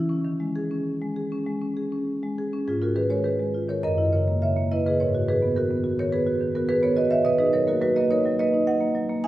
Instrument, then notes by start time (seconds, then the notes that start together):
marimba
Already playing: E4
0.09 C#4
0.25 D#3
0.40 G#3
0.56 G#4
0.71 C#4
1.02 G#3
1.16 G#4
1.32 C#4
1.47 G#3
1.62 C#4
1.77 G#4
1.92 C#4
2.23 G#3
2.38 G#4
2.53 C#4
2.68 G#2 F4 G#4
2.82 F4 F#4 A#4
2.96 D#3 G#4 B4
3.10 G#3 A#4 C#5
3.24 D#3 G#4 B4
3.39 G#3
3.54 F4
3.69 D#3 A#4 C#5
3.83 F#2 A#4 D#5
3.98 E4
4.13 C#3 A#4 C#5
4.28 A#3
4.42 C#3 C#5 E5
4.57 A#3
4.71 E4 B4 D#5
4.86 C#3 G#4 B4
5.00 G#2 A#4 C#5
5.15 F#4
5.29 D#3 G#4 B4
5.42 B3
5.56 D#3 F#4 A#4
5.71 B3
5.84 F#4
5.99 D#3 A#4 C#5
6.12 B3 G#4 B4
6.27 F#4
6.41 D#3
6.55 B3 F#4 A#4
6.69 D#3 G#4 B4
6.83 B3 A#4 C#5
6.97 F#4 B4 D#5
7.10 D#3 C#5 E5
7.25 B2 B4 D#5
7.39 D#4 G#4 B4
7.53 F#3 A#4 C#5
7.67 A#3 F#4 A#4
7.81 F#3 F#4 B4
7.96 A#3 B4 D#5
8.11 D#4 A#4 C#5
8.25 F#3
8.39 A#3 B4 D#5
8.54 D#4
8.67 F#3 D#5 F#5
8.81 A#3
8.95 F#3
9.09 A#3
9.24 D#4 G#5